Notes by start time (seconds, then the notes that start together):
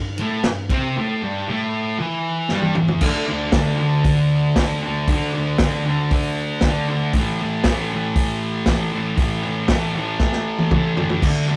Already playing: G2
0.18 A2 A3, ride
0.44 G2, snare, ride
0.69 C3 C4, kick, ride
0.97 A2 A3
1.22 G2 G3
1.48 A2 A3
1.99 E3 E4
2.49 G2 G3, snare
2.62 high tom
2.75 E2 E3, mid tom
2.88 floor tom
3.01 D3 A3, kick, crash
3.05 D4
3.27 A3 D4
3.52 D3 A3 D4, kick, snare, open hi-hat
3.78 A3 D4
4.04 kick, open hi-hat
4.56 D3 A3 D4, kick, snare, open hi-hat
4.83 A3 D4
5.07 D3 A3, kick, open hi-hat
5.13 D4
5.33 A3 D4
5.58 D3 A3 D4, kick, snare, open hi-hat
5.85 A3 D4
6.11 kick, open hi-hat
6.61 D3, kick, snare, open hi-hat
6.65 A3 D4
6.88 A3 D4
7.13 A2 E3, kick, open hi-hat
7.18 A3
7.40 E3 A3
7.64 A2 E3, kick, snare, open hi-hat
7.68 A3
7.91 E3 A3
8.16 kick, open hi-hat
8.66 A2 E3 A3, kick, snare, open hi-hat
8.92 E3 A3
9.17 A2 E3 A3, kick, open hi-hat
9.43 E3 A3
9.68 A2 E3 A3, kick, snare, open hi-hat
9.94 A3
9.98 E3
10.19 kick, snare
10.32 snare
10.59 high tom
10.71 A2 E3 A3, kick, mid tom
10.97 E3 A3, floor tom
11.10 floor tom
11.22 D3 A3 D4, kick, crash
11.47 A3 D4